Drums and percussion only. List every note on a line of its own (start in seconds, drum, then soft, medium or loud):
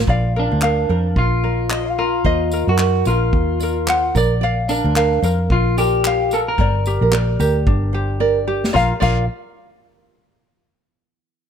0.07 kick loud
0.61 clap medium
1.16 kick loud
1.70 clap loud
2.25 kick loud
2.51 tambourine medium
2.78 clap medium
3.06 tambourine medium
3.33 kick loud
3.60 tambourine medium
3.88 clap loud
4.15 kick medium
4.15 tambourine medium
4.69 tambourine medium
4.96 clap medium
5.23 tambourine medium
5.50 kick loud
5.78 tambourine medium
6.05 clap loud
6.31 tambourine medium
6.58 kick loud
6.86 tambourine medium
7.12 clap medium
7.40 tambourine medium
7.67 kick loud
8.64 snare medium
8.75 kick loud
8.75 snare medium
9.02 kick loud
9.02 crash medium